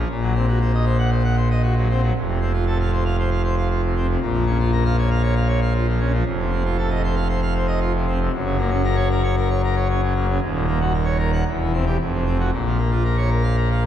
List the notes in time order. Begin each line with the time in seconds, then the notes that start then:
0.09 A#1 A#2
0.22 F#3
0.35 C4
0.48 F#4
0.61 C5
0.74 D#5
0.86 C5
0.98 F#5
1.11 C5
1.24 F#5
1.37 C5
1.51 D#5
1.63 F#4
1.77 F#3
1.90 C4
2.02 F#3
2.15 F1 F2
2.27 C3
2.41 C4
2.53 F4
2.67 A4
2.80 F5
2.93 C5
3.05 F5
3.19 C5
3.31 F5
3.44 C5
3.57 F5
3.71 F4
3.84 C3
3.96 C4
4.09 C3
4.20 A#1 A#2
4.33 F3
4.46 C#4
4.59 F4
4.72 A#4
4.85 F5
4.98 C#5
5.10 F5
5.23 C#5
5.36 F5
5.48 C#5
5.62 F5
5.74 F4
5.87 F3
5.99 C#4
6.13 F3
6.25 F1 F2
6.39 C3
6.51 C4
6.65 F4
6.77 A4
6.90 D#5
7.04 C5
7.16 F5
7.29 C5
7.42 F5
7.55 C5
7.67 D#5
7.80 F4
7.95 C3
8.07 C4
8.21 C3
8.33 F#1 F#2
8.45 C#3
8.57 A#3
8.70 C#4
8.84 A#4
8.96 C#5
9.11 A#4
9.23 C#5
9.37 A#4
9.50 C#5
9.64 A#4
9.76 C#5
9.89 C#4
10.02 C#3
10.15 A#3
10.28 C#3
10.41 D#1 D#2
10.54 A#2
10.66 A#3
10.81 F#4
10.93 A#4
11.05 C#5
11.18 A#4
11.33 F#5
11.47 E1 E2
11.61 E3
11.73 C4
11.86 G4
12.00 F1 F2
12.13 C3
12.25 C4
12.39 F#4
12.51 A#1 A#2
12.65 F3
12.78 A#3
12.91 F4
13.04 A#4
13.17 C#5
13.30 A#4
13.43 F5
13.56 A#4
13.71 F5